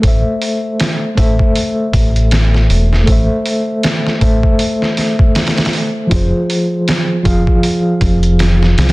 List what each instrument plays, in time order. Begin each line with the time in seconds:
0.00 fingered electric bass A1, tine electric piano A3 A4, kick, open hi-hat
0.05 tine electric piano C5 E5
0.42 open hi-hat
0.80 snare, open hi-hat
1.15 fingered electric bass A1, tine electric piano A3 A4 C5, kick, open hi-hat
1.19 tine electric piano E5
1.39 kick
1.56 open hi-hat
1.93 fingered electric bass A1, kick, open hi-hat
2.16 closed hi-hat
2.31 snare, open hi-hat
2.54 snare
2.70 fingered electric bass E1, open hi-hat
2.93 snare
3.03 tine electric piano A3 A4, open hi-hat
3.08 fingered electric bass A1, tine electric piano C5, kick
3.12 tine electric piano E5
3.46 open hi-hat
3.83 snare, open hi-hat
4.07 snare
4.19 fingered electric bass A1, tine electric piano A3 A4 C5, kick, open hi-hat
4.23 tine electric piano E5
4.43 kick
4.59 open hi-hat
4.82 snare
4.97 snare, open hi-hat
5.19 kick
5.35 snare, open hi-hat
5.47 snare, open hi-hat
5.57 snare, open hi-hat
5.65 snare, open hi-hat
5.73 open hi-hat
6.07 tine electric piano F3 F4
6.11 fingered electric bass F1, tine electric piano G#4, kick, open hi-hat
6.16 tine electric piano C5
6.50 open hi-hat
6.88 snare, open hi-hat
7.23 fingered electric bass F1, tine electric piano F3 F4 G#4, kick, open hi-hat
7.27 tine electric piano F5
7.47 kick
7.63 open hi-hat
8.01 fingered electric bass F1, kick, open hi-hat
8.23 closed hi-hat
8.39 snare, open hi-hat
8.63 snare
8.78 fingered electric bass C2, snare, open hi-hat
8.89 open hi-hat